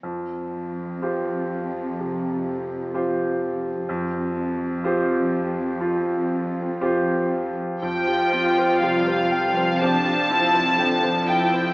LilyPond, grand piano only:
\new Staff \with { instrumentName = "Grand piano" } { \time 4/4 \key f \major \tempo 4 = 61 f,4 <f' g' c''>4 c4 <f' g' c''>4 | f,4 <f' g' c''>4 f'4 <f' g' c''>4 | f,4 c4 <g' c''>2 | }